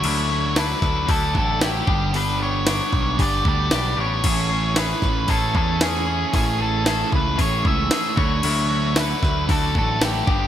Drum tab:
CC |x-------|--------|x-------|--------|
HH |--o-o-o-|o-o-o-o-|--o-o-o-|o-o-o-o-|
SD |--oo--o-|--o---o-|--oo--o-|--o---o-|
BD |---ooo-o|---ooo--|o--ooo--|o--ooo-o|

CC |x-------|
HH |--o-o-o-|
SD |--oo--o-|
BD |---ooo-o|